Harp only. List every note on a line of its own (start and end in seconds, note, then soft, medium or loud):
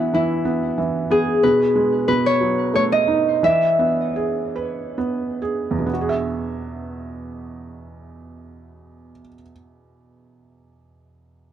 0.00 0.14 E4 medium
0.00 1.63 F#4 medium
0.00 0.60 B4 medium
0.00 0.15 C#5 medium
0.14 2.76 E4 medium
1.11 3.39 G#4 medium
1.43 2.08 B4 medium
2.08 4.13 B4 medium
2.26 2.75 C#5 medium
2.75 2.81 C#5 medium
2.92 3.50 D#5 medium
3.44 5.16 E5 medium